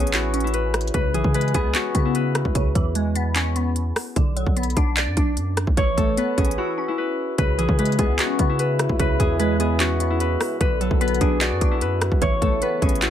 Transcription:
Already playing: A1 E3 A3 B3 C#4 E4 F#4 G#4 B4 C#5
0.00 closed hi-hat
0.07 closed hi-hat
0.14 E4 F#4, clap, closed hi-hat
0.34 C#4, closed hi-hat
0.40 E4, closed hi-hat
0.47 closed hi-hat
0.54 B4, closed hi-hat
0.74 cross-stick, closed hi-hat
0.81 closed hi-hat
0.87 closed hi-hat
0.94 C#2 C#3 B4, kick, closed hi-hat
1.14 B1 E3 G#4, closed hi-hat
1.24 C#3, kick
1.34 G#3 B4, closed hi-hat
1.41 closed hi-hat
1.48 closed hi-hat
1.54 C#2 B3 G#4, kick, closed hi-hat
1.75 C#4 F#4, clap, closed hi-hat
1.95 C#3 B3, kick, closed hi-hat
2.05 E4
2.15 B4, closed hi-hat
2.35 cross-stick, closed hi-hat
2.45 C#2, kick
2.55 C#2 C#3, kick, closed hi-hat
2.75 E2 E3, kick, closed hi-hat
2.95 G#3, closed hi-hat
3.15 B3, closed hi-hat
3.36 C#4, clap, closed hi-hat
3.56 B3, closed hi-hat
3.76 closed hi-hat
3.96 cross-stick, open hi-hat
4.16 B1 D3, kick, closed hi-hat
4.36 F#3, closed hi-hat
4.47 B1, kick
4.57 B3, closed hi-hat
4.63 closed hi-hat
4.70 closed hi-hat
4.77 B1 D4, kick, closed hi-hat
4.97 D5, clap, closed hi-hat
5.07 F#2
5.17 B1 D4, kick, closed hi-hat
5.37 F#2, closed hi-hat
5.57 cross-stick, closed hi-hat
5.67 B1, kick
5.77 A1 E3 C#5, kick, closed hi-hat
5.97 A1 A3 A4, kick, closed hi-hat
6.17 B3 B4, closed hi-hat
6.37 A1 C#4 G#4, kick, closed hi-hat
6.45 closed hi-hat
6.51 closed hi-hat
6.58 E4 F#4
6.78 C#4
6.88 E4
6.98 B4
7.38 C#2 C#3 G#3 B3 E4 B4, kick, closed hi-hat
7.58 B1 E3 G#4, closed hi-hat
7.69 C#3, kick
7.79 G#3 B4, closed hi-hat
7.85 closed hi-hat
7.92 closed hi-hat
7.99 C#2 B3 G#4, kick, closed hi-hat
8.19 C#4 F#4, clap, closed hi-hat
8.39 C#3 B3, kick, closed hi-hat
8.49 E4
8.59 B4, closed hi-hat
8.79 cross-stick, closed hi-hat
8.89 C#2, kick
8.99 C#2 C#3 B4, kick, closed hi-hat
9.19 E2 E3 G#4, kick, closed hi-hat
9.39 G#3 B4, closed hi-hat
9.60 B3 G#4, closed hi-hat
9.80 C#4 F#4, clap, closed hi-hat
10.00 B3, closed hi-hat
10.10 E4
10.20 B4, closed hi-hat
10.41 cross-stick, open hi-hat
10.61 B1 D3 F#3 F#4 B4, kick, closed hi-hat
10.81 F#3 A4, closed hi-hat
10.91 B1, kick
11.01 B3 B4, closed hi-hat
11.08 closed hi-hat
11.14 closed hi-hat
11.21 B1 D4 G#4, kick, closed hi-hat
11.41 F#4 D5, clap, closed hi-hat
11.51 F#2
11.61 B1 D4, kick, closed hi-hat
11.71 E4
11.81 F#2 B4, closed hi-hat
12.01 cross-stick, closed hi-hat
12.12 B1, kick
12.22 A1 C#3 E3 A3 E4 C#5, kick, closed hi-hat
12.42 A1 A3 A4, kick, closed hi-hat
12.62 B3 B4, closed hi-hat
12.82 A1 C#4 G#4, kick, closed hi-hat
12.89 closed hi-hat
12.95 closed hi-hat
13.02 E4 F#4, clap, closed hi-hat

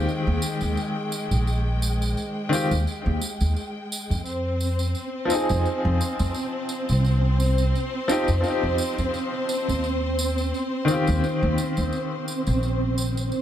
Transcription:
Already playing: D#3 G#3 C4 F4 G4 G5
0.09 tambourine
0.27 D#2
0.42 tambourine
0.61 D#2, tambourine
0.77 tambourine
1.12 tambourine
1.31 A#1, tambourine
1.47 tambourine
1.82 tambourine
2.02 tambourine
2.17 tambourine
2.49 D#3 C4 F4, tambourine
2.54 G4
2.71 D#2, tambourine
2.87 tambourine
3.06 D#2
3.22 tambourine
3.40 D#2, tambourine
3.56 tambourine
3.92 tambourine
4.10 F2, tambourine
4.25 C4 C5, tambourine
4.61 tambourine
4.79 tambourine
4.95 tambourine
5.25 F3 C4
5.30 D#4, tambourine
5.35 G#4
5.49 F2, tambourine
5.65 tambourine
5.85 F2
6.01 tambourine
6.19 F2, tambourine
6.34 tambourine
6.69 tambourine
6.89 C2, tambourine
7.04 tambourine
7.40 tambourine
7.58 tambourine
7.75 tambourine
8.08 F3 C4 D#4 G4, tambourine
8.28 F2, tambourine
8.41 F3 C4, tambourine
8.47 D#4 G4
8.63 F2
8.78 tambourine
8.98 F2, tambourine
9.14 tambourine
9.49 tambourine
9.68 D#2, tambourine
9.84 tambourine
10.19 tambourine
10.38 tambourine
10.54 tambourine
10.85 D#3 C4, tambourine
10.91 F4 G4
11.07 D#2, tambourine
11.24 tambourine
11.43 D#2
11.58 tambourine
11.77 D#2, tambourine
11.93 tambourine
12.28 tambourine
12.47 A#1, tambourine
12.63 tambourine
12.98 tambourine
13.17 tambourine
13.32 tambourine

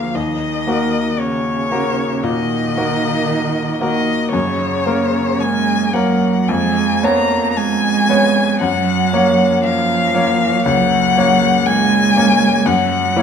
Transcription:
Already playing: D2 F3 A#3 G#4 A#4 F5
0.15 D#2 D#3 D#5
0.67 A#3 F#4 A#4
1.19 C#3 C#5
1.71 A#3 F#4 A#4
2.24 A#2 D#3 D#5
2.77 A#3 F#4 A#4
3.81 D#3 A#3 F#4 A#4 D#5
4.33 F#2 C#3 C#5
4.86 A#3 C#4 A#4
5.40 G#3 G#5
5.93 F#3 A#3 C#4 A#4 F#5
6.48 F2 G#3 G#5
7.03 A#3 B3 C#4 C#5 A#5
7.51 A#5
7.57 G#3 G#5
8.09 B3 C#4 C#5
8.61 F#2 F#3 F#5
9.13 A#3 C#4 C#5
9.63 F3 F5
10.15 A#3 C#4 C#5
10.66 C#2 F#3 F#5
11.17 A#3 C#4 C#5
11.66 G#3 G#5
12.16 A#3 C#4 C#5
12.66 F#2 F#3 F#5
13.16 A#3 E4 C#5

